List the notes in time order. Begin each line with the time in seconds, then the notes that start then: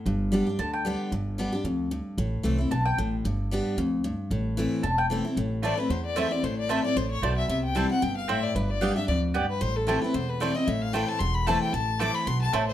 0.06 G1 G2
0.32 G3 B3 D4 G4
0.47 D4 G4
0.59 D2 D3 A5
0.73 G5
0.85 G3 B3 D4 G4
1.12 G1 G2
1.38 G3 B3 D4 G4
1.52 D4 G4
1.64 D2 F2
1.91 G2
2.18 A1 A2
2.43 C2 E3 A3 C4 E4
2.58 C4 E4
2.71 B1 B2 A5
2.85 G5
2.98 A1 A2
3.25 G1 G2
3.51 G3 B3 D4 G4
3.77 D2 F2
4.04 G2
4.31 A1 A2
4.57 E3 A3 C4 E4
4.83 E1 E2 A5
4.98 G5
5.10 E3 A3 C4 E4
5.25 C4 E4
5.37 A1 A2
5.62 E3 A3 C4 E4 C5 D5 A5
5.77 C4 E4 B4
5.89 E2 C5
6.06 D5
6.16 E3 A3 C4 E4 C5 E5 A5
6.31 C4 E4 D5
6.43 A1 A2 C5
6.59 D5
6.69 E3 A3 C4 E4 C5 E5 A5
6.84 C4 E4 D5
6.96 A1 A2 C5
7.11 C#5
7.22 B1 B2 A3 E4 C5 D5 A5
7.38 E5
7.48 C2 C3 E5
7.64 G5
7.75 E3 G3 C4 E4 C5 G5 A5
7.90 C4 E4 F#5
8.02 G1 B2 G5
8.17 F5
8.28 A2 C4 E4 C5 E5 G5
8.43 D5
8.55 G1 G2 B4
8.70 D5
8.81 G3 B3 D4 G4 D5 F5 G5
8.96 D4 G4 E5
9.08 D2 F2 D5
9.34 G2 B3 G4 D5 G5
9.50 B4
9.61 A1 A2 C5
9.76 A4
9.87 E3 A3 C4 E4 G4 C5 A5
10.02 C4 E4 B4
10.14 E1 E2 C5
10.29 B4
10.40 E3 A3 C4 E4 C5 D5 A5
10.55 C4 E4 D#5
10.67 A1 A2 E5
10.82 F5
10.93 E3 A3 C4 E4 C5 G5 A5
11.09 A5
11.20 E1 E2 C6
11.34 B5
11.47 E3 A3 C4 E4 C5 A5
11.61 G5
11.73 A1 A2 A5
11.99 E3 A3 C4 E4 C5 A5 D6
12.15 B5
12.27 B1 B2 C6
12.42 A5
12.53 A1 A2 A3 E4 C5 E5 A5
12.68 C5